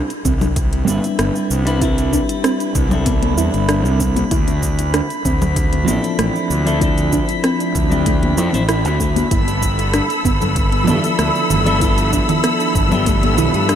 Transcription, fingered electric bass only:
0, 0, Header, 1, 2, 480
1, 0, Start_track
1, 0, Key_signature, 0, "major"
1, 0, Tempo, 625000
1, 1393, Time_signature, 4, 2, 24, 8
1, 10562, End_track
2, 0, Start_track
2, 0, Title_t, "Fingered electric bass"
2, 0, Program_c, 0, 33
2, 192, Note_on_c, 0, 36, 91
2, 675, Note_off_c, 0, 36, 0
2, 675, Note_on_c, 0, 31, 78
2, 750, Note_off_c, 0, 31, 0
2, 914, Note_on_c, 0, 31, 82
2, 990, Note_off_c, 0, 31, 0
2, 1154, Note_on_c, 0, 36, 81
2, 1680, Note_off_c, 0, 36, 0
2, 2113, Note_on_c, 0, 36, 91
2, 2594, Note_off_c, 0, 36, 0
2, 2594, Note_on_c, 0, 40, 87
2, 2670, Note_off_c, 0, 40, 0
2, 2719, Note_on_c, 0, 31, 75
2, 2959, Note_off_c, 0, 31, 0
2, 2959, Note_on_c, 0, 36, 89
2, 3241, Note_off_c, 0, 36, 0
2, 3312, Note_on_c, 0, 38, 95
2, 3839, Note_off_c, 0, 38, 0
2, 4032, Note_on_c, 0, 38, 93
2, 4511, Note_off_c, 0, 38, 0
2, 4511, Note_on_c, 0, 33, 74
2, 4589, Note_off_c, 0, 33, 0
2, 4752, Note_on_c, 0, 33, 84
2, 4829, Note_off_c, 0, 33, 0
2, 4992, Note_on_c, 0, 38, 86
2, 5519, Note_off_c, 0, 38, 0
2, 5951, Note_on_c, 0, 38, 90
2, 6434, Note_off_c, 0, 38, 0
2, 6434, Note_on_c, 0, 41, 89
2, 6510, Note_off_c, 0, 41, 0
2, 6558, Note_on_c, 0, 33, 78
2, 6798, Note_off_c, 0, 33, 0
2, 6798, Note_on_c, 0, 38, 91
2, 7081, Note_off_c, 0, 38, 0
2, 7152, Note_on_c, 0, 31, 84
2, 7679, Note_off_c, 0, 31, 0
2, 7871, Note_on_c, 0, 31, 96
2, 8353, Note_on_c, 0, 43, 80
2, 8364, Note_off_c, 0, 31, 0
2, 8429, Note_off_c, 0, 43, 0
2, 8591, Note_on_c, 0, 38, 79
2, 8669, Note_off_c, 0, 38, 0
2, 8834, Note_on_c, 0, 31, 82
2, 9360, Note_off_c, 0, 31, 0
2, 9791, Note_on_c, 0, 31, 92
2, 10273, Note_off_c, 0, 31, 0
2, 10273, Note_on_c, 0, 35, 88
2, 10349, Note_off_c, 0, 35, 0
2, 10399, Note_on_c, 0, 43, 84
2, 10562, Note_off_c, 0, 43, 0
2, 10562, End_track
0, 0, End_of_file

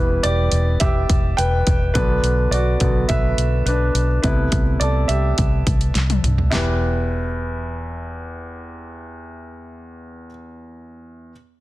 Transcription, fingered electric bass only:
0, 0, Header, 1, 2, 480
1, 0, Start_track
1, 0, Key_signature, 1, "minor"
1, 0, Tempo, 571429
1, 1640, Time_signature, 4, 2, 24, 8
1, 9747, End_track
2, 0, Start_track
2, 0, Title_t, "Fingered electric bass"
2, 0, Program_c, 0, 33
2, 0, Note_on_c, 0, 28, 85
2, 157, Note_off_c, 0, 28, 0
2, 201, Note_on_c, 0, 28, 76
2, 397, Note_off_c, 0, 28, 0
2, 439, Note_on_c, 0, 28, 74
2, 636, Note_off_c, 0, 28, 0
2, 679, Note_on_c, 0, 28, 84
2, 876, Note_off_c, 0, 28, 0
2, 920, Note_on_c, 0, 28, 78
2, 1117, Note_off_c, 0, 28, 0
2, 1161, Note_on_c, 0, 28, 75
2, 1357, Note_off_c, 0, 28, 0
2, 1402, Note_on_c, 0, 28, 76
2, 1598, Note_off_c, 0, 28, 0
2, 1639, Note_on_c, 0, 35, 88
2, 1836, Note_off_c, 0, 35, 0
2, 1871, Note_on_c, 0, 35, 75
2, 2071, Note_off_c, 0, 35, 0
2, 2109, Note_on_c, 0, 35, 82
2, 2310, Note_off_c, 0, 35, 0
2, 2359, Note_on_c, 0, 35, 75
2, 2556, Note_off_c, 0, 35, 0
2, 2600, Note_on_c, 0, 35, 93
2, 2796, Note_off_c, 0, 35, 0
2, 2835, Note_on_c, 0, 35, 68
2, 3033, Note_off_c, 0, 35, 0
2, 3073, Note_on_c, 0, 35, 81
2, 3272, Note_off_c, 0, 35, 0
2, 3314, Note_on_c, 0, 35, 77
2, 3513, Note_off_c, 0, 35, 0
2, 3560, Note_on_c, 0, 36, 78
2, 3756, Note_off_c, 0, 36, 0
2, 3799, Note_on_c, 0, 36, 73
2, 3996, Note_off_c, 0, 36, 0
2, 4034, Note_on_c, 0, 36, 75
2, 4233, Note_off_c, 0, 36, 0
2, 4273, Note_on_c, 0, 36, 67
2, 4472, Note_off_c, 0, 36, 0
2, 4522, Note_on_c, 0, 36, 88
2, 4718, Note_off_c, 0, 36, 0
2, 4760, Note_on_c, 0, 36, 75
2, 4956, Note_off_c, 0, 36, 0
2, 4998, Note_on_c, 0, 36, 79
2, 5195, Note_off_c, 0, 36, 0
2, 5236, Note_on_c, 0, 36, 75
2, 5434, Note_off_c, 0, 36, 0
2, 9747, End_track
0, 0, End_of_file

